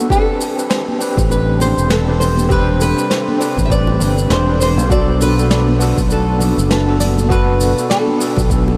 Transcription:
0.09 ambient pad C3 G3 D4 A4, tine electric piano C4 D4 G4 B4, synth arpeggio sound G4, nylon-string guitar A4, kick, shaker
0.40 open hi-hat, shaker
0.56 tine electric piano C4 D4 G4 B4, shaker
0.70 synth arpeggio sound C5, snare, shaker
0.88 high conga
0.99 tine electric piano C4 D4 G4 B4, open hi-hat, high bongo, shaker
1.17 fingered electric bass A1, kick, high bongo, shaker
1.28 tine electric piano C4 D4 G4 B4, nylon-string guitar B4, shaker
1.59 tine electric piano C4 D4 G4 C5, nylon-string guitar C5, open hi-hat, high conga, low conga, shaker
1.77 fingered electric bass E1, shaker
1.90 nylon-string guitar A4, synth arpeggio sound B4, snare, shaker
2.06 tine electric piano C4 D4 G4 B4
2.20 synth arpeggio sound C5, nylon-string guitar C5, open hi-hat, low conga, shaker
2.37 high bongo, high conga, shaker
2.48 tine electric piano C4 D4 G4 B4, synth arpeggio sound G4, nylon-string guitar B4, kick, shaker
2.81 nylon-string guitar B4, open hi-hat, shaker
2.96 tine electric piano C4 D4 G4 B4, shaker
3.10 synth arpeggio sound C5, snare, shaker
3.28 high conga
3.39 tine electric piano C4 D4 G4 B4, open hi-hat, high bongo, shaker
3.58 fingered electric bass A1, kick, high bongo, shaker
3.65 tine electric piano C4, nylon-string guitar E5
3.70 tine electric piano D4 G4 B4, nylon-string guitar D5, kick, shaker
3.87 high bongo
3.99 fingered electric bass G1, tine electric piano C4 D4 G4 B4, open hi-hat, high conga, low conga, shaker
4.17 high bongo, shaker
4.30 fingered electric bass E1, synth arpeggio sound B4, nylon-string guitar C5, snare, shaker
4.46 tine electric piano C4 D4 G4 B4
4.60 synth arpeggio sound C5, nylon-string guitar C5, open hi-hat, low conga, shaker
4.77 fingered electric bass B1, high conga, shaker
4.89 ambient pad B2 A3, tine electric piano B3 D4 F#4 A4, synth arpeggio sound F#4, nylon-string guitar D5, kick, shaker
5.20 nylon-string guitar B4, open hi-hat, shaker
5.36 tine electric piano B3 D4 F#4 A4, shaker
5.50 synth arpeggio sound D5, snare, shaker
5.68 high conga
5.79 tine electric piano B3 D4 F#4 A4, open hi-hat, high bongo, shaker
5.98 fingered electric bass B1, kick, high bongo, shaker
6.09 tine electric piano B3 D4 F#4 A4, nylon-string guitar A4, shaker
6.39 tine electric piano B3 D4 F#4 A4, open hi-hat, high conga, low conga, shaker
6.58 fingered electric bass F#1, shaker
6.70 nylon-string guitar A4, synth arpeggio sound B4, snare, shaker
6.86 tine electric piano B3 D4 F#4 A4
7.00 synth arpeggio sound D5, open hi-hat, low conga, shaker
7.18 high bongo, high conga, shaker
7.29 tine electric piano B3 D4 F#4 A4, ambient pad B3, synth arpeggio sound F#4, nylon-string guitar B4, kick, shaker
7.60 open hi-hat, shaker
7.76 tine electric piano B3 D4 F#4 A4, shaker
7.90 nylon-string guitar A4, synth arpeggio sound D5, snare, shaker
8.08 high conga
8.19 tine electric piano B3 D4 F#4 A4, open hi-hat, high bongo, shaker
8.37 fingered electric bass B1, kick, high bongo, shaker
8.49 tine electric piano B3 D4 F#4 A4, kick, shaker
8.68 high bongo

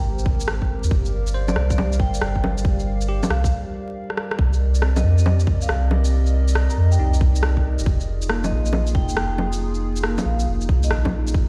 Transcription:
Already playing: analog synth pad G#3 C4 G4 A#4 C5, vibraphone G5
0.04 sub bass G#1
0.19 shaker
0.26 kick
0.40 shaker
0.48 cross-stick
0.62 kick
0.84 sub bass D#2, shaker
0.91 sub bass G1, analog synth pad G3 D5 F5, kick
1.05 shaker
1.27 shaker
1.34 tine electric piano C5
1.48 vibraphone D5, low bongo, shaker
1.56 sub bass C2, cross-stick
1.70 vibraphone D5, kick, shaker
1.78 low bongo
1.93 shaker
2.00 sub bass G1, vibraphone G5, kick
2.14 shaker
2.21 sub bass G1, vibraphone G5, cross-stick
2.35 vibraphone G5, kick
2.44 low bongo
2.58 shaker
2.65 kick
2.80 shaker
3.01 shaker
3.09 tine electric piano G4
3.23 low bongo, shaker
3.30 sub bass C2, vibraphone F5, cross-stick
3.44 kick, shaker
4.10 cross-stick
4.17 cross-stick
4.31 cross-stick
4.38 sub bass C2, analog synth pad C4 G4 A#4 D5 D#5, kick
4.53 shaker
4.75 shaker
4.82 tine electric piano C4, cross-stick
4.96 vibraphone D#5, low bongo, shaker
5.03 sub bass F2
5.18 vibraphone D#5, shaker
5.26 low bongo
5.40 shaker
5.47 sub bass C2, kick
5.62 vibraphone F5, shaker
5.69 sub bass C2, cross-stick
5.91 low bongo
6.05 shaker
6.26 shaker
6.48 shaker
6.55 cross-stick
6.70 vibraphone A#5, shaker
6.77 sub bass F2
6.92 vibraphone G5, shaker
6.99 sub bass C2, tine electric piano D#4
7.14 shaker
7.21 kick
7.36 shaker
7.43 cross-stick
7.57 kick
7.79 sub bass G1, shaker
7.86 sub bass F1, analog synth pad D#4 F4 G#4, kick
8.00 shaker
8.22 shaker
8.29 tine electric piano A#3, cross-stick
8.44 vibraphone D#5, low bongo, shaker
8.51 sub bass A#1
8.66 vibraphone D#5, shaker
8.73 low bongo
8.87 shaker
8.95 sub bass F1, vibraphone G5, kick
9.09 shaker
9.16 sub bass F1, vibraphone G5, cross-stick
9.31 vibraphone G5
9.38 low bongo
9.53 shaker
9.74 shaker
9.96 shaker
10.03 tine electric piano A#3, cross-stick
10.18 low bongo, shaker
10.25 sub bass A#1, vibraphone F5
10.40 shaker
10.47 sub bass F1
10.61 shaker
10.69 sub bass C2, kick
10.83 vibraphone D#5, shaker
10.91 sub bass A#1, tine electric piano D#4, cross-stick
11.05 kick, low bongo
11.27 shaker
11.34 sub bass G#1, analog synth pad G#3 G4 A#4 C5, kick

